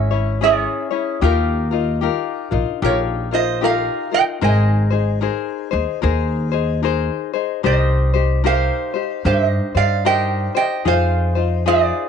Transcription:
Already playing: upright bass G#1, ukulele C#4 E4 G#4, resonator guitar played with a steel bar C#5 E5
0.11 ukulele C#4 E4 C#5
0.41 ukulele C#4 E4 G#4 C#5, resonator guitar played with a steel bar G#4 C#5
0.91 ukulele C#4 E4 C#5
1.21 upright bass D#2, ukulele D#4 F4 G4 A#4, resonator guitar played with a steel bar G4 A#4
1.71 ukulele D#4 F4 A#4
2.01 ukulele D#4 F4 G4 A#4
2.51 upright bass A#1, ukulele D#4 F4 A#4
2.82 upright bass A#1, ukulele D#4 F4 G4 A#4, resonator guitar played with a steel bar A#4 C#5
3.31 ukulele D#4 F4 A#4, resonator guitar played with a steel bar C5 D#5
3.61 ukulele D#4 F4 G4 A#4, resonator guitar played with a steel bar A#4
3.65 resonator guitar played with a steel bar F5
4.11 ukulele D#4 F4 A#4, resonator guitar played with a steel bar D#5 G5
4.41 upright bass G#1, ukulele D#4 G#4 A#4 C5, resonator guitar played with a steel bar D#5 G#5
4.90 ukulele D#4 G#4 C5
5.21 ukulele D#4 G#4 A#4 C5
5.71 upright bass D#2, ukulele D#4 G#4 C5
6.02 upright bass D#2, ukulele D#4 G#4 A#4 C5
6.52 ukulele D#4 G#4 C5
6.83 ukulele D#4 G#4 A#4 C5
7.33 ukulele D#4 G#4 C5
7.63 upright bass C2, ukulele D#4 G4 A#4 C5, resonator guitar played with a steel bar C5 D#5
8.14 ukulele D#4 G4 C5
8.44 ukulele D#4 G4 A#4 C5, resonator guitar played with a steel bar C5 F5
8.94 ukulele D#4 G4 C5
9.24 upright bass G2, ukulele D#4 G4 A#4 C5, resonator guitar played with a steel bar C5 E5
9.46 resonator guitar played with a steel bar D#5
9.75 upright bass G2, ukulele D#4 G4 C5, resonator guitar played with a steel bar D5 F5
10.05 ukulele D#4 G4 A#4 C5, resonator guitar played with a steel bar D#5 G5
10.55 ukulele D#4 G4 C5, resonator guitar played with a steel bar D#5 G5
10.85 upright bass F2, ukulele D#4 F4 G#4 C5, resonator guitar played with a steel bar C5 F5
11.35 ukulele D#4 F4 C5
11.66 ukulele D#4 F4 G#4 C5, resonator guitar played with a steel bar G#4 D5

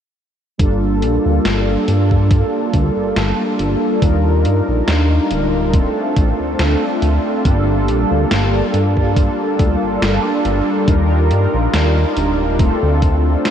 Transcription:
0.58 analog synth bass G1, analog polysynth G3 A#3 D4 F4 A4, kick, closed hi-hat
1.02 analog synth bass A#1, closed hi-hat
1.26 analog synth bass D2
1.45 analog synth bass G1, snare, closed hi-hat
1.88 analog synth bass G2, closed hi-hat
2.11 kick
2.31 kick, closed hi-hat
2.74 analog synth bass D2, kick, closed hi-hat
2.97 analog synth bass G1
3.16 analog synth bass G1, snare, closed hi-hat
3.59 analog synth bass G1, closed hi-hat
4.01 analog synth bass D#2, analog polysynth G3 D4 D#4 F4 A#4, kick, closed hi-hat
4.45 analog synth bass G2, closed hi-hat
4.68 analog synth bass A#1
4.88 analog synth bass D#2, snare, closed hi-hat
5.31 analog synth bass D1, closed hi-hat
5.72 analog polysynth A3 C4 D4 F4 A4, kick, closed hi-hat
6.16 analog synth bass A1, kick, closed hi-hat
6.40 analog synth bass D2
6.59 analog synth bass D2, snare, closed hi-hat
7.02 analog synth bass D2, closed hi-hat
7.44 analog synth bass G1, analog polysynth G3 A#3 D4 F4 A4, kick, closed hi-hat
7.88 analog synth bass A#1, closed hi-hat
8.11 analog synth bass D2
8.31 analog synth bass G1, snare, closed hi-hat
8.74 analog synth bass G2, closed hi-hat
8.97 kick
9.16 kick, closed hi-hat
9.59 analog synth bass D2, kick, closed hi-hat
9.83 analog synth bass G1
10.02 analog synth bass G1, snare, closed hi-hat
10.45 analog synth bass G1, closed hi-hat
10.86 analog synth bass D#2, analog polysynth G3 D4 D#4 F4 A#4, kick, closed hi-hat
11.31 analog synth bass G2, closed hi-hat
11.54 analog synth bass A#1
11.74 analog synth bass D#2, snare, closed hi-hat
12.17 analog synth bass D1, closed hi-hat
12.58 analog polysynth A3 C4 D4 F4 A4, kick, closed hi-hat
12.83 analog synth bass D2
13.02 kick, closed hi-hat
13.45 snare, closed hi-hat

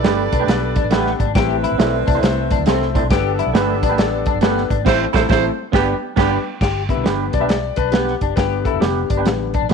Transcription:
Already playing: saxophone section A4 B4 D5
0.03 fingered electric bass G1, clean electric guitar A3 D4 G4 B4, grand piano B3 D4 G4 A4 B4, snare, closed hi-hat, high conga
0.32 fingered electric bass B1, clean electric guitar D4, kick, closed hi-hat, high conga, low conga
0.40 clean electric guitar A3 D4 G4 B4
0.47 fingered electric bass B1, grand piano B3 D4 G4 A4 B4, snare, closed hi-hat
0.76 clean electric guitar D4, kick, closed hi-hat, high conga
0.84 fingered electric bass A1, high conga
0.91 clean electric guitar A3 B3 D4 G4 B4, grand piano B3 D4 G4 A4 B4, snare, closed hi-hat
1.07 snare
1.20 fingered electric bass G#1, clean electric guitar D4, kick, closed hi-hat, low conga
1.35 fingered electric bass A1, grand piano A3 C4 E4 A4 C5, saxophone section C4 E4 B4, clean electric guitar G4, kick, snare, closed hi-hat
1.64 clean electric guitar E4, closed hi-hat, high conga
1.72 fingered electric bass A1
1.78 fingered electric bass B1, grand piano A3 C4 E4 A4 D5, clean electric guitar C4 E4 A4 C5, snare, closed hi-hat, high conga
2.07 fingered electric bass C2, clean electric guitar D4, kick, closed hi-hat, muted conga, high conga, low conga
2.15 clean electric guitar C4 E4 A4 C5
2.23 fingered electric bass C2, grand piano A3 C4 E4 A4 C5, snare, closed hi-hat
2.51 clean electric guitar D4, kick, closed hi-hat, high conga
2.59 fingered electric bass D2, high conga
2.66 fingered electric bass C2, grand piano A3 C4 E4 A4 C5, clean electric guitar C4 E4 A4 C5, snare, closed hi-hat, muted conga
2.82 snare
2.95 clean electric guitar C4 D4 E4 A4 C5, kick, closed hi-hat, muted conga, low conga
3.03 fingered electric bass B1
3.09 fingered electric bass G1, saxophone section B3 D4 A4, grand piano B3 D4 G4 A4 B4, clean electric guitar G4, kick, snare, closed hi-hat
3.39 clean electric guitar E4, closed hi-hat, muted conga, high conga
3.46 fingered electric bass B1
3.53 fingered electric bass G1, clean electric guitar A3 D4 G4 B4, grand piano B3 D4 G4 A4 B4, snare, closed hi-hat, muted conga, high conga
3.83 fingered electric bass A1, clean electric guitar D4, kick, closed hi-hat, muted conga, high conga, low conga
3.89 clean electric guitar A3 D4 G4 B4
3.98 fingered electric bass A1, grand piano B3 D4 G4 A4 D5, snare, closed hi-hat, muted conga
4.26 clean electric guitar D4, kick, closed hi-hat, muted conga, high conga
4.34 fingered electric bass G1, high conga
4.41 clean electric guitar A3 B3 D4 G4 B4, grand piano B3 D4 G4 A4 B4, snare, closed hi-hat
4.58 snare
4.70 fingered electric bass G#1, clean electric guitar D4, kick, closed hi-hat, muted conga, low conga
4.85 fingered electric bass A1, grand piano A3 C4 E4 A4 C5, clean electric guitar C4 E4 A4 C5, saxophone section E4 A4 C5, kick, snare, crash
5.13 fingered electric bass A1, grand piano A3 C4 E4 A4 C5, clean electric guitar C4 E4 A4 C5, saxophone section E4 A4 C5, kick, snare
5.28 fingered electric bass A1, grand piano A3 C4 E4 A4, clean electric guitar C4 E4 A4 C5, saxophone section E4 A4 C5, kick, snare
5.72 fingered electric bass G1, grand piano G3 B3 D4 G4 B4, clean electric guitar B3 D4 G4 B4, saxophone section B3 D4 G4, kick, snare
6.16 fingered electric bass G1, grand piano G3 B3 D4 G4 B4, clean electric guitar B3 D4 G4 B4, saxophone section B3 D4 G4, kick, snare, crash
6.61 fingered electric bass G1, clean electric guitar G4, kick, snare, crash, muted conga
6.89 grand piano D3 G3 B3, clean electric guitar E4, kick, closed hi-hat
6.97 fingered electric bass B1
7.04 fingered electric bass G1, clean electric guitar B3 D4 G4 B4, snare, closed hi-hat, muted conga, high conga
7.33 fingered electric bass B1, clean electric guitar D4, grand piano D5, kick, closed hi-hat, muted conga, high conga, low conga
7.40 clean electric guitar B3 D4 G4 B4, grand piano E5
7.48 grand piano D5, snare, closed hi-hat
7.76 fingered electric bass B1, clean electric guitar D4, grand piano B4, kick, closed hi-hat, muted conga, high conga
7.85 high conga
7.92 clean electric guitar B3 D4 G4 B4, grand piano G4, snare, closed hi-hat
8.08 snare
8.21 fingered electric bass F#1, clean electric guitar D4, kick, closed hi-hat, muted conga, low conga
8.36 fingered electric bass G1, grand piano D3 G3 B3 B4, clean electric guitar G4, kick, snare, closed hi-hat
8.65 clean electric guitar E4, grand piano A4, kick, closed hi-hat, muted conga
8.74 fingered electric bass F1
8.80 fingered electric bass F1, clean electric guitar B3 D4 G4 B4, grand piano G4, snare, closed hi-hat, muted conga, high conga
9.10 fingered electric bass G1, clean electric guitar D4, kick, closed hi-hat, high conga, low conga
9.17 clean electric guitar B3 D4 G4 B4
9.25 fingered electric bass A1, grand piano D3 G3 B3, snare, closed hi-hat
9.54 clean electric guitar D4, kick, closed hi-hat, high conga
9.62 fingered electric bass A1, high conga
9.69 fingered electric bass A#1, clean electric guitar B3 D4, closed hi-hat

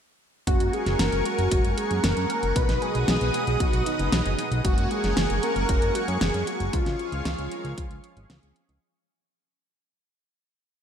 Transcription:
0.47 analog synth bass F#1, analog polysynth G#3 A#3 C#4 F#4, analog synth lead F#4, string machine F#4, analog synth pad A#4 F#5 G#5 C#6, kick, closed hi-hat
0.60 analog synth bass F#1, closed hi-hat
0.73 analog synth lead G#4, string machine G#4, closed hi-hat
0.86 analog synth bass F#1, analog polysynth G#3 A#3 C#4 F#4, snare, closed hi-hat
0.99 analog synth bass F#1, analog synth lead A#4, string machine A#4, snare, closed hi-hat
1.12 analog synth bass F#1, closed hi-hat
1.25 analog polysynth G#3 A#3 C#4 A#4, analog synth lead F#4, string machine F#4, closed hi-hat
1.38 analog synth bass F#1, closed hi-hat
1.51 analog synth bass F#1, analog polysynth G#3 A#3 C#4 F#4, kick, closed hi-hat
1.65 analog synth bass F#1, closed hi-hat
1.71 analog synth lead A#4, string machine A#4
1.77 analog synth lead G#4, string machine G#4, closed hi-hat
1.91 analog synth bass F#2, analog polysynth G#3 A#3 C#4 G#4, closed hi-hat
2.03 analog synth bass F#1, analog synth lead A#4, string machine A#4, snare, closed hi-hat
2.17 analog synth bass F#2, analog polysynth G#3 A#3 C#4 G#4, closed hi-hat
2.29 analog synth lead A#4, string machine A#4, closed hi-hat
2.43 analog synth bass F#1, closed hi-hat
2.56 analog synth bass B1, analog polysynth B2 F#3 B3 D#4 F#4, analog synth lead B4, string machine B4, analog synth pad B4 D#5 D#6, kick, closed hi-hat
2.69 analog synth bass B1, snare, closed hi-hat
2.82 analog synth lead G#4, string machine G#4, closed hi-hat
2.95 analog synth bass B1, analog polysynth B2 F#3 B3 D#4 F#4, closed hi-hat
3.08 analog synth bass B1, snare, closed hi-hat
3.21 analog synth bass B1, closed hi-hat
3.34 analog polysynth B2 F#3 B3 D#4 B4, closed hi-hat
3.47 analog synth bass B1, closed hi-hat
3.60 analog synth bass B1, analog polysynth B2 F#3 B3 D#4 F#4, analog synth lead F#4, string machine F#4, kick, closed hi-hat
3.73 analog synth bass B1, closed hi-hat
3.86 analog synth lead D#4, string machine D#4, closed hi-hat
3.99 analog synth bass F#1, analog polysynth B2 F#3 B3 D#4 G#4, closed hi-hat
4.12 analog synth bass B1, snare, closed hi-hat
4.25 analog synth bass F#1, analog polysynth B2 F#3 B3 D#4 G#4, closed hi-hat
4.39 closed hi-hat
4.52 analog synth bass B1, closed hi-hat
4.65 analog synth bass F#1, analog polysynth G#3 A#3 C#4 F#4, string machine F#4, analog synth lead F#4, analog synth pad A#4 F#5 G#5 C#6, kick, closed hi-hat
4.78 analog synth bass F#1, closed hi-hat
4.91 string machine G#4, analog synth lead G#4, closed hi-hat
5.04 analog synth bass F#1, analog polysynth G#3 A#3 C#4 F#4, snare, closed hi-hat
5.17 analog synth bass F#1, snare, closed hi-hat
5.30 analog synth bass F#1, closed hi-hat
5.43 analog polysynth G#3 A#3 C#4 A#4, analog synth lead A#4, string machine A#4, closed hi-hat
5.56 analog synth bass F#1, closed hi-hat
5.69 analog synth bass F#1, analog polysynth G#3 A#3 C#4 F#4, kick, closed hi-hat
5.82 analog synth bass F#1, closed hi-hat
5.95 analog synth lead F#4, string machine F#4, closed hi-hat
6.08 analog synth bass F#2, analog polysynth G#3 A#3 C#4 G#4, analog synth lead G#4, string machine G#4, closed hi-hat
6.21 analog synth bass F#1, snare, closed hi-hat
6.34 analog synth bass F#2, analog polysynth G#3 A#3 C#4 G#4, closed hi-hat
6.47 analog synth lead F#4, string machine F#4, closed hi-hat
6.60 analog synth bass F#1, closed hi-hat
6.73 analog synth bass C#2, analog polysynth F3 G#3 C#4 F4, analog synth lead F4, string machine F4, analog synth pad G#4 C#5 F5, kick, closed hi-hat
6.86 analog synth bass C#2, snare, closed hi-hat
6.99 closed hi-hat
7.12 analog synth bass C#2, analog polysynth F3 G#3 C#4 F4, closed hi-hat
7.25 analog synth bass C#2, snare, closed hi-hat
7.38 analog synth bass C#2, closed hi-hat
7.52 analog polysynth F3 G#3 C#4 A#4, closed hi-hat
7.65 analog synth bass C#2, closed hi-hat
7.78 analog synth bass C#2, analog polysynth F3 G#3 C#4 F4, kick, closed hi-hat
7.91 analog synth bass C#2, closed hi-hat
8.04 closed hi-hat
8.17 analog synth bass G#1, analog polysynth F3 G#3 C#4 G#4, closed hi-hat
8.30 analog synth bass C#2, snare, closed hi-hat
8.43 analog synth bass C#2, analog polysynth F3 G#3 C#4 G#4, closed hi-hat
8.56 closed hi-hat
8.69 analog synth bass C#2, closed hi-hat

